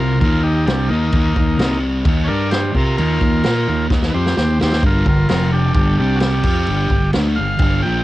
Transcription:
0.00 fingered electric bass C2, distorted electric guitar C3 G3, transistor combo organ F4 A#4
0.20 fingered electric bass D#2, distorted electric guitar D#3 A#3 D#4, transistor combo organ F4 A#4, kick, crash
0.43 transistor combo organ D#4 G4
0.66 fingered electric bass C2, distorted electric guitar C3 G3 C4, transistor combo organ D4 G4, snare, crash
0.89 fingered electric bass D#2, distorted electric guitar D#3 A#3 D#4, transistor combo organ A#3 D#4
1.12 fingered electric bass D#2, distorted electric guitar D#3 A#3 D#4, kick, crash
1.36 fingered electric bass D#2, distorted electric guitar D#3 A#3, kick
1.57 fingered electric bass C2, distorted electric guitar C3 G3 C4, snare, crash
2.05 fingered electric bass D#2, distorted electric guitar D#3 A#3 D#4, kick, crash
2.24 transistor combo organ A#4 C#5 D5
2.29 fingered electric bass G2, distorted electric guitar G3 D4 G4
2.51 transistor combo organ G4 C5, snare, crash
2.75 fingered electric bass C3, distorted electric guitar C4 G4 C5, transistor combo organ F4 A#4, kick
2.97 fingered electric bass D#2, distorted electric guitar D#3 A#3 D#4, transistor combo organ F4 A#4, crash
3.21 fingered electric bass D#2, distorted electric guitar D#3 A#3, kick
3.44 fingered electric bass A#2, distorted electric guitar A#3 F4 A#4, snare, crash
3.68 fingered electric bass D#2, distorted electric guitar D#3 A#3
3.90 fingered electric bass D#2, distorted electric guitar D#3 A#3 D#4, kick, snare
4.02 snare
4.10 transistor combo organ B4
4.14 fingered electric bass F2, distorted electric guitar F3 C4 F4, transistor combo organ G4 C5
4.26 snare
4.37 fingered electric bass D#2, distorted electric guitar D#3 A#3, transistor combo organ G4 C5, snare
4.59 fingered electric bass D#2, distorted electric guitar D#3 A#3 D#4, transistor combo organ G4 C5, snare
4.73 snare
4.83 fingered electric bass G1, distorted electric guitar G2 D3 G3, transistor combo organ F4 A#4, kick, crash
5.06 fingered electric bass G1, distorted electric guitar G2 D3, transistor combo organ F4 A#4, kick
5.29 fingered electric bass F1, distorted electric guitar F2 C3 F3, transistor combo organ F4 A#4, snare, crash
5.52 transistor combo organ D4 G4
5.74 fingered electric bass G1, distorted electric guitar G2 D3 G3, transistor combo organ D4 G4, kick, crash
5.98 fingered electric bass C2, distorted electric guitar C3 G3 C4, transistor combo organ D4 G4
6.16 transistor combo organ F#4
6.20 transistor combo organ G4, snare, crash
6.43 fingered electric bass F2, distorted electric guitar F3 C4 F4, kick, crash
6.67 fingered electric bass G1, distorted electric guitar G2 D3 G3, crash
6.90 fingered electric bass G1, distorted electric guitar G2 D3, kick
7.13 fingered electric bass D2, distorted electric guitar D3 A3 D4, snare, crash
7.36 fingered electric bass G1, distorted electric guitar G2 D3, transistor combo organ F5
7.59 fingered electric bass G1, distorted electric guitar G2 D3 G3, kick, crash
7.83 fingered electric bass A#1, distorted electric guitar A#2 F3 A#3, transistor combo organ G5

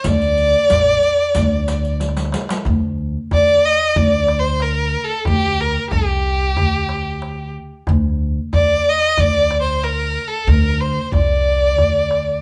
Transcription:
0.04 upright bass D2, violin D5, riq, darbuka dum
0.21 riq, darbuka ka
0.38 riq
0.54 riq
0.70 upright bass A1, riq, darbuka dum
1.03 riq
1.35 upright bass D2, riq, darbuka dum
1.68 riq, darbuka tek
1.84 riq, darbuka ka
2.00 riq, darbuka tek
2.09 darbuka ka
2.17 riq, darbuka tek
2.25 darbuka ka
2.32 riq, darbuka tek
2.41 darbuka ka
2.49 riq, darbuka tek
2.57 darbuka ka
2.65 upright bass D2, darbuka dum
2.82 darbuka ka
2.98 darbuka ka
3.31 upright bass D2, violin D5, darbuka dum
3.65 violin D#5
3.96 upright bass D2, violin D5, darbuka dum
4.28 darbuka tek
4.39 violin C5
4.60 violin A#4, darbuka tek
5.04 violin A4
5.10 darbuka ka
5.25 upright bass D2, violin G4, darbuka dum
5.42 darbuka ka
5.58 violin A#4, darbuka ka
5.91 upright bass C2, violin G4, darbuka dum
6.57 upright bass D2, darbuka dum
6.89 darbuka tek
7.22 darbuka tek
7.87 upright bass D2, darbuka dum
8.04 darbuka ka
8.20 darbuka ka
8.53 upright bass D2, violin D5, darbuka dum
8.89 violin D#5
9.17 upright bass D2, violin D5, darbuka dum
9.51 darbuka tek
9.62 violin C5
9.83 violin A#4, darbuka tek
10.27 violin A4
10.32 darbuka ka
10.47 upright bass D2, violin A#4, darbuka dum
10.64 darbuka ka
10.81 violin C5
11.12 upright bass C2, violin D5, darbuka dum
11.46 darbuka ka
11.77 upright bass D2, darbuka dum
12.11 darbuka tek
12.27 darbuka ka

